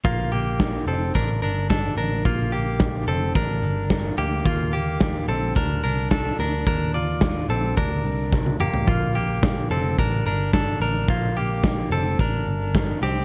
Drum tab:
HH |x-o-x-o-x-o-x-o-|x-o-x-o-x-o-x-o-|x-o-x-o-x-o-x-o-|x-o-x-o-x-o-----|
SD |----o-------o---|----o-------o---|----o-------o---|----o-------o---|
T1 |----------------|----------------|----------------|-------------o--|
T2 |----------------|----------------|----------------|--------------o-|
FT |----------------|----------------|----------------|---------------o|
BD |o---o---o---o---|o---o---o---o---|o---o---o---o---|o---o---o---o---|

HH |x-o-x-o-x-o-x-o-|x-o-x-o-x-o-x-o-|
SD |----o-------o---|----o-------o---|
T1 |----------------|----------------|
T2 |----------------|----------------|
FT |----------------|----------------|
BD |o---o---o---o---|o---o---o---o---|